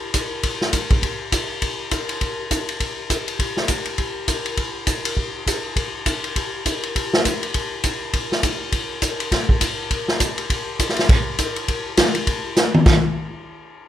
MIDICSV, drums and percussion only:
0, 0, Header, 1, 2, 480
1, 0, Start_track
1, 0, Tempo, 295712
1, 1670, Time_signature, 4, 2, 24, 8
1, 22533, End_track
2, 0, Start_track
2, 0, Title_t, "Drums"
2, 224, Note_on_c, 9, 44, 56
2, 224, Note_on_c, 9, 51, 69
2, 229, Note_on_c, 9, 36, 23
2, 386, Note_off_c, 9, 44, 0
2, 386, Note_off_c, 9, 51, 0
2, 391, Note_off_c, 9, 36, 0
2, 704, Note_on_c, 9, 51, 63
2, 706, Note_on_c, 9, 36, 22
2, 866, Note_off_c, 9, 51, 0
2, 869, Note_off_c, 9, 36, 0
2, 998, Note_on_c, 9, 38, 36
2, 1160, Note_off_c, 9, 38, 0
2, 1182, Note_on_c, 9, 44, 59
2, 1182, Note_on_c, 9, 51, 64
2, 1185, Note_on_c, 9, 36, 25
2, 1344, Note_off_c, 9, 44, 0
2, 1344, Note_off_c, 9, 51, 0
2, 1348, Note_off_c, 9, 36, 0
2, 1468, Note_on_c, 9, 51, 45
2, 1471, Note_on_c, 9, 36, 52
2, 1630, Note_off_c, 9, 51, 0
2, 1633, Note_off_c, 9, 36, 0
2, 1667, Note_on_c, 9, 36, 22
2, 1669, Note_on_c, 9, 51, 57
2, 1830, Note_off_c, 9, 36, 0
2, 1832, Note_off_c, 9, 51, 0
2, 2146, Note_on_c, 9, 36, 26
2, 2147, Note_on_c, 9, 44, 59
2, 2147, Note_on_c, 9, 51, 72
2, 2309, Note_off_c, 9, 36, 0
2, 2309, Note_off_c, 9, 44, 0
2, 2309, Note_off_c, 9, 51, 0
2, 2626, Note_on_c, 9, 51, 57
2, 2628, Note_on_c, 9, 36, 21
2, 2789, Note_off_c, 9, 51, 0
2, 2791, Note_off_c, 9, 36, 0
2, 3105, Note_on_c, 9, 44, 55
2, 3105, Note_on_c, 9, 51, 64
2, 3108, Note_on_c, 9, 36, 17
2, 3267, Note_off_c, 9, 44, 0
2, 3267, Note_off_c, 9, 51, 0
2, 3271, Note_off_c, 9, 36, 0
2, 3393, Note_on_c, 9, 51, 48
2, 3555, Note_off_c, 9, 51, 0
2, 3588, Note_on_c, 9, 51, 53
2, 3590, Note_on_c, 9, 36, 20
2, 3750, Note_off_c, 9, 51, 0
2, 3753, Note_off_c, 9, 36, 0
2, 4071, Note_on_c, 9, 36, 20
2, 4071, Note_on_c, 9, 44, 65
2, 4071, Note_on_c, 9, 51, 64
2, 4233, Note_off_c, 9, 36, 0
2, 4233, Note_off_c, 9, 44, 0
2, 4233, Note_off_c, 9, 51, 0
2, 4360, Note_on_c, 9, 51, 46
2, 4522, Note_off_c, 9, 51, 0
2, 4549, Note_on_c, 9, 36, 18
2, 4549, Note_on_c, 9, 51, 62
2, 4711, Note_off_c, 9, 36, 0
2, 4712, Note_off_c, 9, 51, 0
2, 5029, Note_on_c, 9, 36, 21
2, 5031, Note_on_c, 9, 44, 59
2, 5031, Note_on_c, 9, 51, 67
2, 5192, Note_off_c, 9, 36, 0
2, 5193, Note_off_c, 9, 44, 0
2, 5193, Note_off_c, 9, 51, 0
2, 5320, Note_on_c, 9, 51, 49
2, 5482, Note_off_c, 9, 51, 0
2, 5507, Note_on_c, 9, 36, 25
2, 5511, Note_on_c, 9, 51, 61
2, 5670, Note_off_c, 9, 36, 0
2, 5673, Note_off_c, 9, 51, 0
2, 5792, Note_on_c, 9, 38, 33
2, 5954, Note_off_c, 9, 38, 0
2, 5974, Note_on_c, 9, 44, 59
2, 5974, Note_on_c, 9, 51, 71
2, 5984, Note_on_c, 9, 36, 24
2, 6136, Note_off_c, 9, 44, 0
2, 6136, Note_off_c, 9, 51, 0
2, 6146, Note_off_c, 9, 36, 0
2, 6257, Note_on_c, 9, 51, 43
2, 6419, Note_off_c, 9, 51, 0
2, 6459, Note_on_c, 9, 51, 52
2, 6464, Note_on_c, 9, 36, 21
2, 6622, Note_off_c, 9, 51, 0
2, 6627, Note_off_c, 9, 36, 0
2, 6944, Note_on_c, 9, 36, 21
2, 6944, Note_on_c, 9, 44, 59
2, 6944, Note_on_c, 9, 51, 67
2, 7106, Note_off_c, 9, 44, 0
2, 7106, Note_off_c, 9, 51, 0
2, 7107, Note_off_c, 9, 36, 0
2, 7232, Note_on_c, 9, 51, 46
2, 7395, Note_off_c, 9, 51, 0
2, 7422, Note_on_c, 9, 51, 59
2, 7424, Note_on_c, 9, 36, 20
2, 7584, Note_off_c, 9, 51, 0
2, 7586, Note_off_c, 9, 36, 0
2, 7900, Note_on_c, 9, 44, 61
2, 7900, Note_on_c, 9, 51, 68
2, 7904, Note_on_c, 9, 36, 25
2, 8062, Note_off_c, 9, 44, 0
2, 8062, Note_off_c, 9, 51, 0
2, 8066, Note_off_c, 9, 36, 0
2, 8198, Note_on_c, 9, 51, 66
2, 8361, Note_off_c, 9, 51, 0
2, 8386, Note_on_c, 9, 36, 26
2, 8549, Note_off_c, 9, 36, 0
2, 8872, Note_on_c, 9, 36, 21
2, 8884, Note_on_c, 9, 44, 64
2, 8884, Note_on_c, 9, 51, 73
2, 9034, Note_off_c, 9, 36, 0
2, 9046, Note_off_c, 9, 44, 0
2, 9046, Note_off_c, 9, 51, 0
2, 9352, Note_on_c, 9, 36, 26
2, 9356, Note_on_c, 9, 51, 58
2, 9514, Note_off_c, 9, 36, 0
2, 9519, Note_off_c, 9, 51, 0
2, 9836, Note_on_c, 9, 36, 23
2, 9836, Note_on_c, 9, 44, 53
2, 9836, Note_on_c, 9, 51, 67
2, 9998, Note_off_c, 9, 44, 0
2, 9998, Note_off_c, 9, 51, 0
2, 9999, Note_off_c, 9, 36, 0
2, 10127, Note_on_c, 9, 51, 42
2, 10289, Note_off_c, 9, 51, 0
2, 10320, Note_on_c, 9, 36, 20
2, 10324, Note_on_c, 9, 51, 59
2, 10482, Note_off_c, 9, 36, 0
2, 10486, Note_off_c, 9, 51, 0
2, 10804, Note_on_c, 9, 36, 17
2, 10804, Note_on_c, 9, 44, 50
2, 10804, Note_on_c, 9, 51, 66
2, 10966, Note_off_c, 9, 36, 0
2, 10967, Note_off_c, 9, 44, 0
2, 10967, Note_off_c, 9, 51, 0
2, 11093, Note_on_c, 9, 51, 43
2, 11255, Note_off_c, 9, 51, 0
2, 11290, Note_on_c, 9, 36, 20
2, 11294, Note_on_c, 9, 51, 63
2, 11453, Note_off_c, 9, 36, 0
2, 11456, Note_off_c, 9, 51, 0
2, 11580, Note_on_c, 9, 38, 56
2, 11742, Note_off_c, 9, 38, 0
2, 11771, Note_on_c, 9, 36, 19
2, 11771, Note_on_c, 9, 44, 62
2, 11771, Note_on_c, 9, 51, 70
2, 11933, Note_off_c, 9, 36, 0
2, 11933, Note_off_c, 9, 44, 0
2, 11933, Note_off_c, 9, 51, 0
2, 12057, Note_on_c, 9, 51, 46
2, 12219, Note_off_c, 9, 51, 0
2, 12242, Note_on_c, 9, 51, 57
2, 12249, Note_on_c, 9, 36, 21
2, 12404, Note_off_c, 9, 51, 0
2, 12411, Note_off_c, 9, 36, 0
2, 12719, Note_on_c, 9, 44, 55
2, 12719, Note_on_c, 9, 51, 68
2, 12725, Note_on_c, 9, 36, 24
2, 12881, Note_off_c, 9, 44, 0
2, 12881, Note_off_c, 9, 51, 0
2, 12888, Note_off_c, 9, 36, 0
2, 13204, Note_on_c, 9, 51, 66
2, 13206, Note_on_c, 9, 36, 25
2, 13366, Note_off_c, 9, 51, 0
2, 13368, Note_off_c, 9, 36, 0
2, 13504, Note_on_c, 9, 38, 38
2, 13667, Note_off_c, 9, 38, 0
2, 13684, Note_on_c, 9, 44, 59
2, 13684, Note_on_c, 9, 51, 70
2, 13685, Note_on_c, 9, 36, 26
2, 13847, Note_off_c, 9, 36, 0
2, 13847, Note_off_c, 9, 44, 0
2, 13847, Note_off_c, 9, 51, 0
2, 14159, Note_on_c, 9, 51, 60
2, 14160, Note_on_c, 9, 36, 23
2, 14322, Note_off_c, 9, 51, 0
2, 14323, Note_off_c, 9, 36, 0
2, 14637, Note_on_c, 9, 44, 60
2, 14637, Note_on_c, 9, 51, 65
2, 14641, Note_on_c, 9, 36, 19
2, 14800, Note_off_c, 9, 44, 0
2, 14800, Note_off_c, 9, 51, 0
2, 14803, Note_off_c, 9, 36, 0
2, 14934, Note_on_c, 9, 51, 50
2, 15096, Note_off_c, 9, 51, 0
2, 15121, Note_on_c, 9, 36, 26
2, 15125, Note_on_c, 9, 51, 64
2, 15129, Note_on_c, 9, 38, 38
2, 15283, Note_off_c, 9, 36, 0
2, 15288, Note_off_c, 9, 51, 0
2, 15291, Note_off_c, 9, 38, 0
2, 15404, Note_on_c, 9, 36, 56
2, 15566, Note_off_c, 9, 36, 0
2, 15596, Note_on_c, 9, 44, 52
2, 15596, Note_on_c, 9, 51, 76
2, 15600, Note_on_c, 9, 36, 25
2, 15759, Note_off_c, 9, 44, 0
2, 15759, Note_off_c, 9, 51, 0
2, 15763, Note_off_c, 9, 36, 0
2, 16079, Note_on_c, 9, 36, 22
2, 16080, Note_on_c, 9, 51, 59
2, 16242, Note_off_c, 9, 36, 0
2, 16242, Note_off_c, 9, 51, 0
2, 16366, Note_on_c, 9, 38, 40
2, 16528, Note_off_c, 9, 38, 0
2, 16558, Note_on_c, 9, 44, 69
2, 16558, Note_on_c, 9, 51, 68
2, 16560, Note_on_c, 9, 36, 27
2, 16720, Note_off_c, 9, 44, 0
2, 16720, Note_off_c, 9, 51, 0
2, 16722, Note_off_c, 9, 36, 0
2, 16844, Note_on_c, 9, 51, 47
2, 17007, Note_off_c, 9, 51, 0
2, 17041, Note_on_c, 9, 36, 27
2, 17044, Note_on_c, 9, 51, 65
2, 17203, Note_off_c, 9, 36, 0
2, 17207, Note_off_c, 9, 51, 0
2, 17521, Note_on_c, 9, 36, 25
2, 17522, Note_on_c, 9, 44, 56
2, 17522, Note_on_c, 9, 51, 72
2, 17679, Note_on_c, 9, 38, 27
2, 17683, Note_off_c, 9, 36, 0
2, 17684, Note_off_c, 9, 44, 0
2, 17684, Note_off_c, 9, 51, 0
2, 17798, Note_on_c, 9, 51, 46
2, 17839, Note_off_c, 9, 38, 0
2, 17839, Note_on_c, 9, 38, 42
2, 17961, Note_off_c, 9, 51, 0
2, 18002, Note_off_c, 9, 38, 0
2, 18004, Note_on_c, 9, 36, 78
2, 18004, Note_on_c, 9, 51, 70
2, 18008, Note_on_c, 9, 49, 63
2, 18166, Note_off_c, 9, 36, 0
2, 18167, Note_off_c, 9, 51, 0
2, 18170, Note_off_c, 9, 49, 0
2, 18480, Note_on_c, 9, 44, 52
2, 18480, Note_on_c, 9, 51, 76
2, 18484, Note_on_c, 9, 36, 20
2, 18643, Note_off_c, 9, 44, 0
2, 18643, Note_off_c, 9, 51, 0
2, 18646, Note_off_c, 9, 36, 0
2, 18768, Note_on_c, 9, 51, 50
2, 18930, Note_off_c, 9, 51, 0
2, 18964, Note_on_c, 9, 36, 24
2, 18964, Note_on_c, 9, 51, 64
2, 19126, Note_off_c, 9, 51, 0
2, 19127, Note_off_c, 9, 36, 0
2, 19435, Note_on_c, 9, 44, 73
2, 19435, Note_on_c, 9, 51, 80
2, 19438, Note_on_c, 9, 38, 85
2, 19442, Note_on_c, 9, 36, 21
2, 19598, Note_off_c, 9, 44, 0
2, 19598, Note_off_c, 9, 51, 0
2, 19601, Note_off_c, 9, 38, 0
2, 19604, Note_off_c, 9, 36, 0
2, 19718, Note_on_c, 9, 51, 49
2, 19880, Note_off_c, 9, 51, 0
2, 19917, Note_on_c, 9, 51, 63
2, 19918, Note_on_c, 9, 36, 28
2, 20080, Note_off_c, 9, 36, 0
2, 20080, Note_off_c, 9, 51, 0
2, 20392, Note_on_c, 9, 44, 68
2, 20396, Note_on_c, 9, 38, 58
2, 20555, Note_off_c, 9, 44, 0
2, 20558, Note_off_c, 9, 38, 0
2, 20686, Note_on_c, 9, 48, 78
2, 20848, Note_off_c, 9, 48, 0
2, 20873, Note_on_c, 9, 38, 84
2, 20873, Note_on_c, 9, 49, 82
2, 20876, Note_on_c, 9, 36, 97
2, 21035, Note_off_c, 9, 38, 0
2, 21035, Note_off_c, 9, 49, 0
2, 21038, Note_off_c, 9, 36, 0
2, 22533, End_track
0, 0, End_of_file